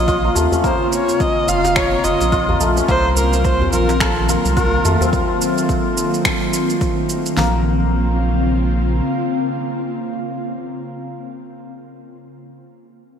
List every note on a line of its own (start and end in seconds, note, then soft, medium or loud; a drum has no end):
0.00 0.30 A#1 loud
0.00 2.84 C#3 medium
0.00 0.24 A#3 loud
0.00 7.33 A#3 medium
0.00 0.58 C4 medium
0.00 7.33 C4 medium
0.00 2.84 F4 medium
0.00 0.42 A#4 medium
0.00 0.36 D#5 medium
0.08 1.47 F4 loud
0.08 kick loud
0.08 shaker soft
0.24 0.42 A#3 medium
0.35 0.47 D#2 medium
0.35 0.70 A3 medium
0.35 djembe tone medium
0.35 shaker medium
0.52 2.77 C#4 medium
0.52 djembe bass medium
0.52 shaker soft
0.64 2.49 A#3 loud
0.64 0.90 C5 medium
0.64 kick loud
0.64 shaker soft
0.92 1.22 C#5 medium
0.92 shaker medium
1.08 djembe slap soft
1.08 shaker soft
1.20 1.50 D#5 loud
1.20 kick loud
1.20 shaker soft
1.48 1.98 F1 loud
1.48 2.04 F4 medium
1.48 1.77 F5 loud
1.48 shaker medium
1.65 djembe slap medium
1.65 shaker soft
1.76 2.66 A#4 medium
1.76 2.05 C#5 loud
1.76 finger snap medium
1.76 kick loud
1.76 djembe tone soft
1.76 shaker soft
2.04 2.15 F1 loud
2.04 2.32 F4 medium
2.04 2.60 D#5 loud
2.04 djembe slap medium
2.04 djembe tone soft
2.04 shaker medium
2.20 2.54 A#1 loud
2.20 djembe slap soft
2.20 shaker soft
2.32 3.72 F4 loud
2.32 kick loud
2.32 shaker soft
2.49 2.66 A#3 medium
2.49 djembe bass medium
2.60 2.81 A#1 loud
2.60 2.94 A3 medium
2.60 shaker medium
2.77 5.08 C#4 medium
2.77 djembe tone medium
2.77 shaker soft
2.88 3.67 C2 loud
2.88 7.33 D#3 medium
2.88 7.33 F#3 medium
2.88 4.73 A#3 loud
2.88 3.14 C5 loud
2.88 kick loud
2.88 shaker soft
3.16 3.46 A#4 loud
3.16 djembe tone soft
3.16 shaker medium
3.33 djembe slap soft
3.33 shaker soft
3.45 3.72 C5 loud
3.45 kick loud
3.45 shaker soft
3.62 djembe bass medium
3.73 4.37 A#1 loud
3.73 4.29 F4 medium
3.73 4.02 A#4 loud
3.73 shaker medium
3.89 djembe slap medium
3.89 shaker soft
4.00 4.31 A4 medium
4.00 4.91 A#4 medium
4.00 finger snap medium
4.00 kick loud
4.00 shaker soft
4.29 4.56 F4 medium
4.29 4.56 A#4 medium
4.29 djembe slap medium
4.29 shaker medium
4.45 4.79 C2 loud
4.45 djembe tone soft
4.45 shaker soft
4.57 7.93 F4 loud
4.57 4.98 A#4 loud
4.57 kick loud
4.57 shaker soft
4.74 4.91 A#3 medium
4.85 4.96 F2 medium
4.85 7.43 A3 medium
4.85 djembe tone medium
4.85 shaker medium
5.01 9.02 C4 medium
5.01 djembe bass medium
5.01 shaker soft
5.13 kick loud
5.13 shaker soft
5.41 shaker medium
5.58 shaker soft
5.69 kick loud
5.69 shaker soft
5.97 shaker medium
6.14 shaker soft
6.25 finger snap medium
6.25 kick loud
6.25 shaker soft
6.53 shaker medium
6.70 shaker soft
6.81 kick loud
6.81 shaker soft
7.09 shaker medium
7.26 shaker soft
7.37 9.01 A#1 loud
7.37 10.37 C#3 medium
7.37 10.37 A#3 medium
7.37 11.66 A#3 medium
7.37 10.37 C4 medium
7.37 10.37 F4 medium
7.37 snare loud